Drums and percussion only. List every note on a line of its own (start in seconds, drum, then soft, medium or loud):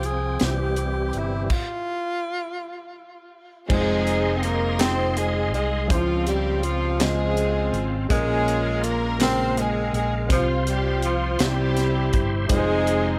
0.03 closed hi-hat soft
0.39 snare medium
0.39 closed hi-hat medium
0.76 closed hi-hat soft
1.13 closed hi-hat soft
1.50 kick medium
1.50 crash medium
3.70 kick loud
3.70 crash medium
4.07 closed hi-hat medium
4.43 closed hi-hat soft
4.80 snare loud
4.80 clap medium
4.80 closed hi-hat medium
5.17 closed hi-hat medium
5.54 closed hi-hat soft
5.90 kick medium
5.90 closed hi-hat medium
6.27 closed hi-hat medium
6.63 closed hi-hat soft
7.00 snare loud
7.00 clap medium
7.00 closed hi-hat medium
7.37 closed hi-hat soft
7.74 closed hi-hat soft
8.10 kick loud
8.10 closed hi-hat medium
8.48 closed hi-hat medium
8.84 closed hi-hat medium
9.20 snare loud
9.20 clap medium
9.20 closed hi-hat medium
9.57 closed hi-hat medium
9.94 closed hi-hat soft
10.30 kick medium
10.30 closed hi-hat medium
10.67 closed hi-hat medium
11.02 closed hi-hat medium
11.39 snare loud
11.39 clap medium
11.39 closed hi-hat medium
11.77 snare soft
11.77 closed hi-hat medium
12.13 kick medium
12.13 closed hi-hat soft
12.49 kick medium
12.49 closed hi-hat medium
12.87 closed hi-hat medium